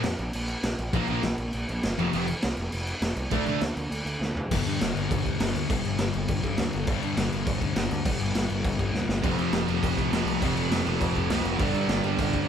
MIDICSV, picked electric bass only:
0, 0, Header, 1, 2, 480
1, 0, Start_track
1, 0, Key_signature, -2, "minor"
1, 0, Tempo, 296150
1, 1532, Time_signature, 4, 2, 24, 8
1, 20232, End_track
2, 0, Start_track
2, 0, Title_t, "Picked electric bass"
2, 0, Program_c, 0, 34
2, 60, Note_on_c, 0, 41, 81
2, 224, Note_off_c, 0, 41, 0
2, 310, Note_on_c, 0, 34, 88
2, 471, Note_off_c, 0, 34, 0
2, 564, Note_on_c, 0, 34, 88
2, 878, Note_off_c, 0, 34, 0
2, 1030, Note_on_c, 0, 34, 84
2, 1193, Note_off_c, 0, 34, 0
2, 1280, Note_on_c, 0, 34, 97
2, 1440, Note_off_c, 0, 34, 0
2, 1508, Note_on_c, 0, 34, 102
2, 1673, Note_off_c, 0, 34, 0
2, 1740, Note_on_c, 0, 34, 88
2, 1908, Note_off_c, 0, 34, 0
2, 1982, Note_on_c, 0, 34, 91
2, 2149, Note_off_c, 0, 34, 0
2, 2243, Note_on_c, 0, 34, 89
2, 2404, Note_off_c, 0, 34, 0
2, 2496, Note_on_c, 0, 34, 88
2, 2653, Note_off_c, 0, 34, 0
2, 2735, Note_on_c, 0, 34, 89
2, 2893, Note_off_c, 0, 34, 0
2, 2983, Note_on_c, 0, 31, 88
2, 3139, Note_off_c, 0, 31, 0
2, 3207, Note_on_c, 0, 29, 104
2, 3368, Note_off_c, 0, 29, 0
2, 3460, Note_on_c, 0, 29, 95
2, 3774, Note_off_c, 0, 29, 0
2, 3956, Note_on_c, 0, 36, 91
2, 4109, Note_off_c, 0, 36, 0
2, 4182, Note_on_c, 0, 29, 97
2, 4340, Note_off_c, 0, 29, 0
2, 4423, Note_on_c, 0, 29, 90
2, 4737, Note_off_c, 0, 29, 0
2, 4888, Note_on_c, 0, 29, 94
2, 5052, Note_off_c, 0, 29, 0
2, 5129, Note_on_c, 0, 36, 100
2, 5293, Note_off_c, 0, 36, 0
2, 5378, Note_on_c, 0, 38, 101
2, 5539, Note_off_c, 0, 38, 0
2, 5609, Note_on_c, 0, 38, 84
2, 5773, Note_off_c, 0, 38, 0
2, 5854, Note_on_c, 0, 38, 97
2, 6016, Note_off_c, 0, 38, 0
2, 6098, Note_on_c, 0, 38, 91
2, 6260, Note_off_c, 0, 38, 0
2, 6333, Note_on_c, 0, 38, 90
2, 6496, Note_off_c, 0, 38, 0
2, 6565, Note_on_c, 0, 38, 79
2, 6731, Note_off_c, 0, 38, 0
2, 6809, Note_on_c, 0, 38, 86
2, 6974, Note_off_c, 0, 38, 0
2, 7046, Note_on_c, 0, 38, 96
2, 7212, Note_off_c, 0, 38, 0
2, 7306, Note_on_c, 0, 31, 97
2, 7482, Note_off_c, 0, 31, 0
2, 7559, Note_on_c, 0, 43, 89
2, 7730, Note_off_c, 0, 43, 0
2, 7796, Note_on_c, 0, 31, 91
2, 7968, Note_off_c, 0, 31, 0
2, 8032, Note_on_c, 0, 31, 94
2, 8206, Note_off_c, 0, 31, 0
2, 8275, Note_on_c, 0, 31, 89
2, 8448, Note_off_c, 0, 31, 0
2, 8515, Note_on_c, 0, 38, 89
2, 8688, Note_off_c, 0, 38, 0
2, 8746, Note_on_c, 0, 31, 97
2, 8922, Note_off_c, 0, 31, 0
2, 8981, Note_on_c, 0, 38, 104
2, 9158, Note_off_c, 0, 38, 0
2, 9236, Note_on_c, 0, 31, 101
2, 9408, Note_off_c, 0, 31, 0
2, 9477, Note_on_c, 0, 31, 86
2, 9648, Note_off_c, 0, 31, 0
2, 9709, Note_on_c, 0, 31, 89
2, 9883, Note_off_c, 0, 31, 0
2, 9969, Note_on_c, 0, 31, 94
2, 10136, Note_off_c, 0, 31, 0
2, 10182, Note_on_c, 0, 31, 88
2, 10358, Note_off_c, 0, 31, 0
2, 10418, Note_on_c, 0, 31, 86
2, 10596, Note_off_c, 0, 31, 0
2, 10674, Note_on_c, 0, 38, 95
2, 10845, Note_off_c, 0, 38, 0
2, 10931, Note_on_c, 0, 31, 102
2, 11096, Note_off_c, 0, 31, 0
2, 11135, Note_on_c, 0, 31, 107
2, 11313, Note_off_c, 0, 31, 0
2, 11403, Note_on_c, 0, 43, 85
2, 11571, Note_off_c, 0, 43, 0
2, 11623, Note_on_c, 0, 31, 92
2, 11798, Note_off_c, 0, 31, 0
2, 11864, Note_on_c, 0, 31, 94
2, 12038, Note_off_c, 0, 31, 0
2, 12096, Note_on_c, 0, 31, 88
2, 12273, Note_off_c, 0, 31, 0
2, 12333, Note_on_c, 0, 38, 95
2, 12511, Note_off_c, 0, 38, 0
2, 12581, Note_on_c, 0, 31, 94
2, 12756, Note_off_c, 0, 31, 0
2, 12827, Note_on_c, 0, 38, 109
2, 12999, Note_off_c, 0, 38, 0
2, 13046, Note_on_c, 0, 31, 100
2, 13226, Note_off_c, 0, 31, 0
2, 13299, Note_on_c, 0, 31, 82
2, 13473, Note_off_c, 0, 31, 0
2, 13536, Note_on_c, 0, 31, 96
2, 13711, Note_off_c, 0, 31, 0
2, 13786, Note_on_c, 0, 31, 99
2, 13957, Note_off_c, 0, 31, 0
2, 14012, Note_on_c, 0, 31, 96
2, 14188, Note_off_c, 0, 31, 0
2, 14246, Note_on_c, 0, 31, 94
2, 14424, Note_off_c, 0, 31, 0
2, 14470, Note_on_c, 0, 38, 87
2, 14653, Note_off_c, 0, 38, 0
2, 14729, Note_on_c, 0, 31, 105
2, 14905, Note_off_c, 0, 31, 0
2, 14970, Note_on_c, 0, 29, 109
2, 15145, Note_off_c, 0, 29, 0
2, 15202, Note_on_c, 0, 41, 89
2, 15380, Note_off_c, 0, 41, 0
2, 15446, Note_on_c, 0, 29, 103
2, 15622, Note_off_c, 0, 29, 0
2, 15687, Note_on_c, 0, 29, 97
2, 15862, Note_off_c, 0, 29, 0
2, 15925, Note_on_c, 0, 29, 96
2, 16100, Note_off_c, 0, 29, 0
2, 16160, Note_on_c, 0, 36, 89
2, 16337, Note_off_c, 0, 36, 0
2, 16379, Note_on_c, 0, 29, 91
2, 16563, Note_off_c, 0, 29, 0
2, 16620, Note_on_c, 0, 36, 105
2, 16803, Note_off_c, 0, 36, 0
2, 16878, Note_on_c, 0, 29, 99
2, 17054, Note_off_c, 0, 29, 0
2, 17101, Note_on_c, 0, 29, 87
2, 17283, Note_off_c, 0, 29, 0
2, 17334, Note_on_c, 0, 29, 95
2, 17518, Note_off_c, 0, 29, 0
2, 17589, Note_on_c, 0, 29, 91
2, 17768, Note_off_c, 0, 29, 0
2, 17843, Note_on_c, 0, 29, 104
2, 18016, Note_off_c, 0, 29, 0
2, 18084, Note_on_c, 0, 29, 102
2, 18256, Note_off_c, 0, 29, 0
2, 18310, Note_on_c, 0, 36, 95
2, 18487, Note_off_c, 0, 36, 0
2, 18550, Note_on_c, 0, 29, 110
2, 18726, Note_off_c, 0, 29, 0
2, 18791, Note_on_c, 0, 31, 98
2, 18966, Note_off_c, 0, 31, 0
2, 19029, Note_on_c, 0, 43, 96
2, 19205, Note_off_c, 0, 43, 0
2, 19259, Note_on_c, 0, 31, 97
2, 19438, Note_off_c, 0, 31, 0
2, 19498, Note_on_c, 0, 31, 92
2, 19677, Note_off_c, 0, 31, 0
2, 19741, Note_on_c, 0, 31, 92
2, 19918, Note_off_c, 0, 31, 0
2, 19989, Note_on_c, 0, 38, 89
2, 20163, Note_off_c, 0, 38, 0
2, 20232, End_track
0, 0, End_of_file